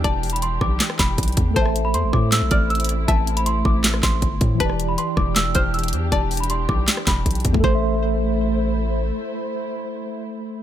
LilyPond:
<<
  \new Staff \with { instrumentName = "Celesta" } { \time 4/4 \key a \minor \tempo 4 = 158 a''8. b''16 c'''8 d'''8 r8 b''4. | a''8. b''16 c'''8 d'''8 e'''8 f'''8 e'''4 | a''8. b''16 c'''8 d'''8 r8 c'''4. | a''8. b''16 c'''8 d'''8 e'''8 f'''8 e'''4 |
a''8. b''16 c'''8 d'''8 r8 b''4. | c'''2. r4 | r1 | }
  \new Staff \with { instrumentName = "Synth pluck" } { \time 4/4 \key a \minor d''1 | c''2~ c''8 d''8 r4 | e''2. r4 | b'2~ b'8 c''8 r4 |
d''1 | c''2. r4 | r1 | }
  \new Staff \with { instrumentName = "Tine electric piano" } { \time 4/4 \key a \minor <e e' g' d''>1 | <a a' e''>1~ | <a a' e''>1 | <e e' g' d''>1~ |
<e e' g' d''>1 | <a a' c'' e''>1~ | <a a' c'' e''>1 | }
  \new Staff \with { instrumentName = "String section" } { \time 4/4 \key a \minor <e d' g'>1 | <a c' e'>1~ | <a c' e'>1 | <e d' g'>1~ |
<e d' g'>1 | <a e' c''>1~ | <a e' c''>1 | }
  \new Staff \with { instrumentName = "808-style bass" } { \clef bass \time 4/4 \key a \minor e,,4. b,,8 r8 e,,8 b,,8 e,8 | a,,4 e,16 a,,16 a,8. b,,16 a,,4. | a,,4. a,,4 a,,8 g,,8 a,8 | e,,4 r8 e,,4 e,,4 e,8 |
e,,4. b,,8 r8 e,,8 b,,8 e,8 | a,,1 | r1 | }
  \new DrumStaff \with { instrumentName = "Drums" } \drummode { \time 4/4 \tuplet 3/2 { <hh bd>16 r16 r16 <hh hho>16 hh16 hh16 } hh8 <bd ss>8 <hc hh sn>16 ss16 <hc bd sn>8 <hh bd>32 hh32 hh32 hh32 <hh bd>8 | <hh bd>16 ss16 hh8 hh8 <bd ss>8 <hc hh sn>8 <hh bd>8 hh32 hh32 hh32 hh32 hh8 | <hh bd>8 hh16 hh16 hh8 bd8 <hc hh sn>16 ss16 <hc bd sn>8 <hh bd>8 <hh bd>8 | <hh bd>16 ss16 hh8 hh8 <bd ss>8 <hc hh sn>8 <hh bd>8 hh32 hh32 hh32 hh32 hh8 |
\tuplet 3/2 { <hh bd>16 r16 r16 <hh hho>16 hh16 hh16 } hh8 <bd ss>8 <hc hh sn>16 ss16 <hc bd sn>8 <hh bd>32 hh32 hh32 hh32 <hh bd>16 bd16 | bd4 r4 r4 r4 | r4 r4 r4 r4 | }
>>